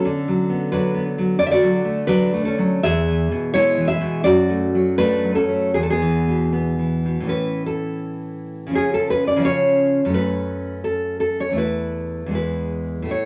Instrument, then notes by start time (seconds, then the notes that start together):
nylon-string guitar
Already playing: C#4 A4
0.05 D3
0.28 F#3
0.50 B3
0.72 F#3 D4 B4
0.94 B3
1.18 F#3
1.39 D3 D5
1.46 E5
1.51 F#4 D5
1.63 F#3
1.85 A3
2.07 F#3 D4 B4
2.33 A3
2.45 C#4 A4
2.58 F#3
2.83 E2 G#4 E5
3.08 E3
3.31 B2
3.54 G#3 E4 C#5
3.77 E3
3.88 G#4 E5
4.01 B2
4.24 F#2 F#4 D5
4.50 A3
4.75 F#3
4.98 A3 D4 B4
5.24 F#3
5.35 C#4 A4
5.49 A3
5.74 E2 G#4
5.83 A4
5.90 B3 G#4
6.02 E3
6.28 B2
6.53 B3
6.79 E3
7.05 B2
7.20 A2 E3
7.27 C#4 B4
7.66 A4
8.67 C#3 F3
8.73 C#4 G#4
8.94 A4
9.10 B4
9.27 D5
9.36 C#3 F3
9.42 C#4 C#5
10.05 F#2 A3
10.12 C#4 B4
10.84 A4
11.20 A4
11.40 C#5
11.50 E2 A3
11.56 E4 B4
12.26 E2 G#3
12.33 E4 B4
13.02 A2 A3
13.09 E4 C#5